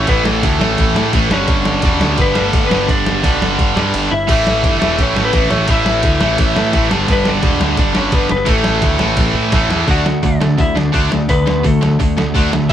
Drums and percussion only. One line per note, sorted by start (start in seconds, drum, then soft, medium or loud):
0.07 kick loud
0.07 ride medium
0.25 snare loud
0.43 kick loud
0.43 ride medium
0.61 snare loud
0.78 kick loud
0.78 ride medium
0.96 snare loud
1.13 kick loud
1.13 ride medium
1.31 snare loud
1.48 kick loud
1.48 ride medium
1.65 snare loud
1.82 kick loud
1.82 ride medium
2.01 snare loud
2.18 kick loud
2.18 ride medium
2.35 snare loud
2.53 kick loud
2.53 ride medium
2.71 snare loud
2.89 kick loud
2.89 ride medium
3.06 snare loud
3.24 kick loud
3.24 ride loud
3.42 snare loud
3.59 kick loud
3.59 ride medium
3.77 snare loud
3.94 ride medium
4.29 kick loud
4.29 crash loud
4.47 snare loud
4.64 kick loud
4.64 ride medium
4.82 snare loud
4.99 kick loud
4.99 ride medium
5.16 snare loud
5.33 kick loud
5.33 ride medium
5.51 snare loud
5.68 kick loud
5.68 ride medium
5.86 snare loud
6.03 kick loud
6.03 ride medium
6.21 snare loud
6.38 kick loud
6.38 ride medium
6.56 snare loud
6.73 kick loud
6.73 ride medium
6.91 snare loud
7.08 kick loud
7.08 ride medium
7.25 snare loud
7.43 kick loud
7.43 ride medium
7.61 snare loud
7.77 kick loud
7.77 ride medium
7.95 snare loud
8.12 kick loud
8.12 ride medium
8.29 snare loud
8.46 kick loud
8.46 ride medium
8.64 snare loud
8.82 kick loud
8.82 ride medium
8.99 snare loud
9.17 kick loud
9.17 snare medium
9.17 ride medium
9.52 kick loud
9.52 snare loud
9.52 ride loud
9.70 snare loud
9.88 kick loud
9.88 open hi-hat medium
10.06 snare loud
10.23 kick loud
10.23 open hi-hat medium
10.42 snare loud
10.59 kick loud
10.59 open hi-hat medium
10.77 snare loud
10.94 kick loud
10.94 open hi-hat medium
11.12 snare loud
11.29 kick loud
11.29 open hi-hat medium
11.47 snare loud
11.64 kick loud
11.64 open hi-hat medium
11.83 snare loud
12.00 kick loud
12.00 open hi-hat medium
12.18 snare loud
12.35 kick loud
12.35 open hi-hat medium
12.53 snare loud
12.69 kick loud
12.69 open hi-hat medium